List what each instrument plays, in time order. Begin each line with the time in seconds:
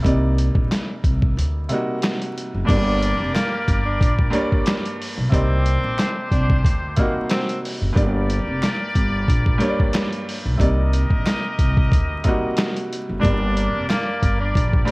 0.03 upright bass C2, grand piano C3 G3 A#3 D#4, kick, closed hi-hat
0.07 grand piano D5
0.39 closed hi-hat
0.55 upright bass A#1, kick
0.72 snare, clap, closed hi-hat
1.04 upright bass C2, kick, closed hi-hat
1.22 kick
1.37 upright bass D2, closed hi-hat
1.69 grand piano C3 G3 A#3 D#4, closed hi-hat
1.73 grand piano F#4
2.02 snare, clap, closed hi-hat
2.22 closed hi-hat
2.38 closed hi-hat
2.54 upright bass F#1
2.65 upright bass G1, grand piano G2 G3 A#3 D4, tenor saxophone D4, kick, crash
2.69 trumpet section G4 A#4 D5, grand piano D5, closed hi-hat
3.03 closed hi-hat
3.20 upright bass F1
3.34 tenor saxophone A#3, finger snap, snare, clap, closed hi-hat
3.68 upright bass G1, kick, closed hi-hat
3.85 tenor saxophone D4
4.01 upright bass A#1, kick, closed hi-hat
4.19 kick
4.30 grand piano G2 G3 A#3 D4, closed hi-hat
4.35 grand piano C#5
4.41 grand piano D5
4.52 kick
4.66 finger snap, snare, clap, closed hi-hat
4.86 closed hi-hat
5.02 open hi-hat
5.18 upright bass B1
5.30 upright bass C2, grand piano C3 G3 A#3 D#4, tenor saxophone C4, trumpet section D4 G4 C5, kick
5.34 grand piano D5, closed hi-hat
5.66 closed hi-hat
5.84 upright bass A#1
5.98 finger snap, snare, clap, closed hi-hat
6.32 upright bass C2, tenor saxophone D4, kick, closed hi-hat
6.50 kick
6.64 upright bass D2, kick, closed hi-hat
6.96 grand piano C3 G3 A#3 D#4, tenor saxophone A#3, kick, closed hi-hat
7.01 grand piano F#4
7.29 tenor saxophone C4, finger snap, snare, clap, closed hi-hat
7.49 closed hi-hat
7.65 open hi-hat
7.82 upright bass F#1
7.93 upright bass G1, grand piano G2 G3 A#3 D4, kick
7.97 trumpet section G4 A#4 D5, grand piano D5, closed hi-hat
8.30 closed hi-hat
8.47 upright bass F1
8.62 finger snap, snare, clap, closed hi-hat
8.95 upright bass G1, kick, closed hi-hat
9.28 upright bass A#1, kick, closed hi-hat
9.46 kick
9.58 grand piano G2 G3 A#3 D4, closed hi-hat
9.62 grand piano C#5
9.69 grand piano D5
9.79 kick
9.93 finger snap, snare, clap, closed hi-hat
10.12 closed hi-hat
10.29 open hi-hat
10.45 upright bass B1
10.57 upright bass C2, grand piano C3 G3 A#3 D#4, kick, closed hi-hat
10.61 trumpet section G4 A#4 D#5, grand piano D5
10.93 closed hi-hat
11.10 upright bass A#1, kick
11.26 finger snap, snare, clap, closed hi-hat
11.59 upright bass C2, kick, closed hi-hat
11.77 kick
11.92 upright bass D2, kick, closed hi-hat
12.24 grand piano C3 G3 A#3 D#4, kick, closed hi-hat
12.28 grand piano F#4
12.57 finger snap, snare, clap, closed hi-hat
12.76 closed hi-hat
12.92 closed hi-hat
13.09 upright bass F#1
13.19 upright bass G1, grand piano G2 G3 A#3 D4, tenor saxophone D4, kick
13.24 trumpet section G4 A#4 D5, grand piano D5, closed hi-hat
13.57 closed hi-hat
13.75 upright bass F1
13.89 tenor saxophone A#3, finger snap, snare, clap, closed hi-hat
14.23 upright bass G1, kick, closed hi-hat
14.40 tenor saxophone D4
14.55 upright bass A#1, kick, closed hi-hat
14.73 kick
14.85 grand piano G2 G3 A#3, closed hi-hat